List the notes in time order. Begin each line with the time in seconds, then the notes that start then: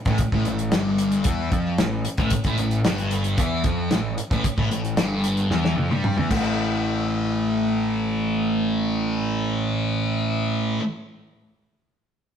0.05 A1 A2, kick, closed hi-hat
0.18 kick, closed hi-hat
0.32 A1 A2, kick
0.45 A1 A2, closed hi-hat
0.59 closed hi-hat
0.72 G1 G2, snare, closed hi-hat
0.98 closed hi-hat
1.12 closed hi-hat
1.24 E2 E3, kick, closed hi-hat
1.52 F2 F3, kick, closed hi-hat
1.78 A1 A2, snare, closed hi-hat
2.05 closed hi-hat
2.17 A1 A2, kick, closed hi-hat
2.30 kick, closed hi-hat
2.44 A1 A2, kick, closed hi-hat
2.58 A1 A2, closed hi-hat
2.71 closed hi-hat
2.85 G1 G2, snare, closed hi-hat
2.98 closed hi-hat
3.11 closed hi-hat
3.24 closed hi-hat
3.38 E2 E3, kick, closed hi-hat
3.64 F2 F3, kick, snare, closed hi-hat
3.91 A1 A2, snare, closed hi-hat
4.18 closed hi-hat
4.31 A1 A2, kick, closed hi-hat
4.44 kick, closed hi-hat
4.58 A1 A2, kick
4.71 A1 A2, closed hi-hat
4.85 closed hi-hat
4.97 G1 G2, snare, closed hi-hat
5.24 closed hi-hat
5.37 closed hi-hat
5.50 E2 E3, snare
5.65 snare
5.76 F2 F3, high tom
5.90 G2 G3, high tom
6.04 mid tom
6.17 E2 E3, mid tom
6.30 A1 A2 E3, kick, crash
6.34 A3